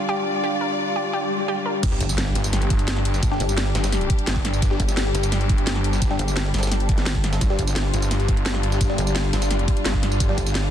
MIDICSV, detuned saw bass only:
0, 0, Header, 1, 2, 480
1, 0, Start_track
1, 0, Tempo, 348837
1, 600, Time_signature, 4, 2, 24, 8
1, 14731, End_track
2, 0, Start_track
2, 0, Title_t, "Detuned saw bass"
2, 0, Program_c, 0, 39
2, 2520, Note_on_c, 0, 31, 98
2, 2741, Note_off_c, 0, 31, 0
2, 3241, Note_on_c, 0, 31, 102
2, 4421, Note_off_c, 0, 31, 0
2, 4440, Note_on_c, 0, 31, 100
2, 4661, Note_off_c, 0, 31, 0
2, 5161, Note_on_c, 0, 31, 101
2, 5621, Note_off_c, 0, 31, 0
2, 5881, Note_on_c, 0, 31, 102
2, 6341, Note_off_c, 0, 31, 0
2, 6360, Note_on_c, 0, 31, 99
2, 6581, Note_off_c, 0, 31, 0
2, 7081, Note_on_c, 0, 31, 100
2, 8261, Note_off_c, 0, 31, 0
2, 8281, Note_on_c, 0, 31, 98
2, 8501, Note_off_c, 0, 31, 0
2, 10200, Note_on_c, 0, 31, 101
2, 10421, Note_off_c, 0, 31, 0
2, 10920, Note_on_c, 0, 31, 105
2, 12101, Note_off_c, 0, 31, 0
2, 12120, Note_on_c, 0, 31, 101
2, 12341, Note_off_c, 0, 31, 0
2, 12840, Note_on_c, 0, 31, 105
2, 13301, Note_off_c, 0, 31, 0
2, 13560, Note_on_c, 0, 31, 104
2, 14021, Note_off_c, 0, 31, 0
2, 14040, Note_on_c, 0, 31, 100
2, 14261, Note_off_c, 0, 31, 0
2, 14731, End_track
0, 0, End_of_file